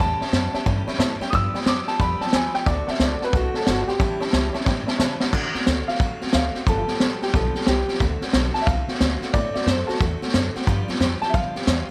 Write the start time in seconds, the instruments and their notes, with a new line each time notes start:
0.00 upright bass E2, steel-string acoustic guitar A2 E3 G3 C#4 G4, honky-tonk piano C#5 E5 B5, upright piano A5
0.21 steel-string acoustic guitar G3 C#4 G4, honky-tonk piano C#5 E5 A5, muted upright bass stroke, snare
0.27 snare
0.32 upright bass F#2, steel-string acoustic guitar E3 G3 C#4 G4, honky-tonk piano C#5 E5 F#5, snare, hi-hat pedal
0.54 steel-string acoustic guitar G3 C#4 G4, honky-tonk piano C#5 E5 A5, muted upright bass stroke, snare
0.66 upright bass G2, steel-string acoustic guitar A2 E3 G3 C#4 G4, honky-tonk piano C#5 E5 A5, kick, snare
0.87 steel-string acoustic guitar G3 C#4 G4, honky-tonk piano C#5 E5 B5, muted upright bass stroke, snare
0.94 snare
0.99 upright bass A2, steel-string acoustic guitar E3 G3 C#4 G4, honky-tonk piano C#5 E5 A5, snare, hi-hat pedal
1.20 steel-string acoustic guitar G3 C#4 G4, honky-tonk piano C#5 E5 G5, muted upright bass stroke, snare
1.30 upright bass G2, steel-string acoustic guitar G2 D3 F3 G3 B3 G4, honky-tonk piano D5 G5 B5, upright piano D#6, kick, snare
1.35 upright piano E6
1.54 steel-string acoustic guitar F3 G3 B3 G4, honky-tonk piano D5 G5 B5, muted upright bass stroke, snare
1.61 snare
1.65 upright bass F#2, steel-string acoustic guitar F3 G3 B3 G4, honky-tonk piano D5 G5 D6, upright piano D6, snare, hi-hat pedal
1.87 steel-string acoustic guitar F3 G3 B3 G4, honky-tonk piano D5 G5 B5, upright piano A5, muted upright bass stroke, snare
1.99 upright bass F2, steel-string acoustic guitar G2 D3 F3 G3 B3 G4, honky-tonk piano D5 G5 B5, upright piano B5, kick, snare
2.20 steel-string acoustic guitar F3 G3 B3 G4, honky-tonk piano D5 G5 B5, upright piano A5, muted upright bass stroke, snare
2.27 snare
2.33 upright bass D#2, steel-string acoustic guitar F3 G3 B3 G4, honky-tonk piano D5 G5 B5, upright piano G#5, snare, hi-hat pedal
2.54 steel-string acoustic guitar F3 G3 B3 G4, honky-tonk piano D5 G5 B5, upright piano G5, muted upright bass stroke, snare
2.66 upright bass D2, steel-string acoustic guitar D3 A3 C4 F#4, honky-tonk piano D5 F#5 A5, upright piano D5, kick, snare
2.87 steel-string acoustic guitar C4 F#4, honky-tonk piano D5 F#5 A5, upright piano E5, muted upright bass stroke, snare
2.91 steel-string acoustic guitar A3, snare
2.99 upright bass C#2, steel-string acoustic guitar D3 A3 C4 F#4, honky-tonk piano D5 F#5 A5, upright piano D5, snare, hi-hat pedal
3.21 steel-string acoustic guitar F#4, upright piano B4, honky-tonk piano D5 F#5 A5, muted upright bass stroke, snare
3.25 steel-string acoustic guitar A3 C4
3.33 upright bass C2, steel-string acoustic guitar D3 A3 C4, upright piano F#4, honky-tonk piano D5 F#5 A5, kick, snare
3.37 steel-string acoustic guitar F#4
3.54 steel-string acoustic guitar A3 C4 F#4, upright piano A4, honky-tonk piano D5 F#5 A5, muted upright bass stroke, snare
3.60 snare
3.66 upright bass G1, steel-string acoustic guitar D3 A3 C4, upright piano F#4, honky-tonk piano D5 F#5 A5, snare, hi-hat pedal
3.70 steel-string acoustic guitar F#4
3.87 steel-string acoustic guitar A3 C4 F#4, upright piano G4, honky-tonk piano D5 F#5 C6, muted upright bass stroke, snare
3.99 upright bass A1, steel-string acoustic guitar A2 E3 G3 C#4 E4, honky-tonk piano C#5 E5 A5, kick, snare
4.20 steel-string acoustic guitar G3 C#4 E4, honky-tonk piano C#5 E5 A5, muted upright bass stroke, snare
4.27 snare
4.33 upright bass C#2, steel-string acoustic guitar E3 G3 C#4 E4, honky-tonk piano C#5 E5 A5, snare, hi-hat pedal
4.53 steel-string acoustic guitar G3 C#4 E4, honky-tonk piano C#5 E5 A5, snare
4.61 snare
4.65 upright bass A2, steel-string acoustic guitar A2 E3 G3 C#4 E4, honky-tonk piano C#5 E5 G5, kick, snare
4.87 steel-string acoustic guitar G3 C#4 E4, honky-tonk piano C#5 E5 A5, muted upright bass stroke, snare
4.98 upright bass C#3, steel-string acoustic guitar E3 G3 C#4, honky-tonk piano C#5 E5 A5, snare, hi-hat pedal
5.03 steel-string acoustic guitar E4
5.20 steel-string acoustic guitar C#4 E4, honky-tonk piano C#5 E5 F#5 A5, muted upright bass stroke, snare
5.24 steel-string acoustic guitar G3
5.33 upright bass D3, steel-string acoustic guitar D3 A3 C4 F#4, kick, snare, crash
5.54 steel-string acoustic guitar A3 C4 F#4, muted upright bass stroke, snare
5.61 snare
5.66 upright bass D2, steel-string acoustic guitar D3 A3 C4 F#4, snare, hi-hat pedal
5.88 steel-string acoustic guitar A3 C4 F#4, upright piano F5, muted upright bass stroke, snare
5.95 snare
6.00 upright bass F#2, steel-string acoustic guitar D3 A3 C4 F#4, kick, snare
6.21 steel-string acoustic guitar A3 C4 F#4, muted upright bass stroke, snare
6.27 snare
6.33 upright bass D2, steel-string acoustic guitar D3 A3 C4 F#4, upright piano F5, snare, hi-hat pedal
6.54 steel-string acoustic guitar A3 C4 F#4, muted upright bass stroke, snare
6.67 upright bass G1, steel-string acoustic guitar G2 D3 F3 G3 B3 G4, upright piano A4, kick, snare
6.88 steel-string acoustic guitar F3 G3 B3 G4, muted upright bass stroke, snare
6.94 snare
7.00 upright bass A1, steel-string acoustic guitar F3 G3 B3 G4, snare, hi-hat pedal
7.22 steel-string acoustic guitar F3 G3 B3 G4, upright piano G4, muted upright bass stroke, snare
7.28 snare
7.34 upright bass B1, steel-string acoustic guitar G2 D3 F3 G3 B3 G4, upright piano A4, kick, snare
7.55 steel-string acoustic guitar F3 G3 B3 G4, muted upright bass stroke, snare
7.61 snare
7.67 upright bass C2, steel-string acoustic guitar F3 G3 B3 G4, upright piano G4, snare, hi-hat pedal
7.88 steel-string acoustic guitar F3 G3 B3 G4, muted upright bass stroke, snare
7.94 snare
8.00 upright bass D2, steel-string acoustic guitar D3 A3 C4 F#4, kick, snare
8.21 steel-string acoustic guitar A3 C4 F#4, muted upright bass stroke, snare
8.28 snare
8.33 upright bass B1, steel-string acoustic guitar D3 A3 C4 F#4, snare, hi-hat pedal
8.54 steel-string acoustic guitar A3 C4 F#4, upright piano A5, muted upright bass stroke, snare
8.61 upright piano E5, snare
8.66 upright bass C2, steel-string acoustic guitar D3 A3 C4 F#4, upright piano F5, kick, snare
8.88 steel-string acoustic guitar A3 C4 F#4, muted upright bass stroke, snare
8.94 snare
9.00 upright bass D2, steel-string acoustic guitar D3 A3 C4 F#4, snare, hi-hat pedal
9.21 steel-string acoustic guitar A3 C4 F#4, muted upright bass stroke, snare
9.33 upright bass A2, steel-string acoustic guitar D3 A3 C4 F#4, upright piano D5, kick, snare
9.54 steel-string acoustic guitar A3 C4 F#4, upright piano D5, muted upright bass stroke, snare
9.61 snare
9.66 upright bass F#2, steel-string acoustic guitar D3 A3 C4 F#4, upright piano C5, snare, hi-hat pedal
9.87 steel-string acoustic guitar C4 F#4, upright piano F#4 A4, muted upright bass stroke, snare
9.91 steel-string acoustic guitar A3, snare
10.00 upright bass E2, steel-string acoustic guitar D3 A3 C4 F#4, kick, snare
10.22 steel-string acoustic guitar A3 C4 F#4, muted upright bass stroke, snare
10.28 snare
10.34 upright bass F#2, steel-string acoustic guitar D3 A3 C4 F#4, snare, hi-hat pedal
10.55 steel-string acoustic guitar A3 C4 F#4, muted upright bass stroke, snare
10.62 snare
10.67 upright bass G2, steel-string acoustic guitar G2 D3 F3 G3 B3 G4, kick, snare
10.88 steel-string acoustic guitar F3 G3 B3 G4, muted upright bass stroke, snare
10.95 snare
11.00 upright bass F2, steel-string acoustic guitar F3 G3 B3 G4, snare, hi-hat pedal
11.21 steel-string acoustic guitar F3 G3 B3 G4, upright piano A5, muted upright bass stroke, snare
11.30 upright piano E5
11.34 upright bass D2, steel-string acoustic guitar G2 D3 F3 G3 B3 G4, upright piano F5, kick, snare
11.55 steel-string acoustic guitar F3 G3 B3 G4, muted upright bass stroke, snare
11.62 snare
11.67 upright bass E2, steel-string acoustic guitar F3 G3 B3 G4, snare, hi-hat pedal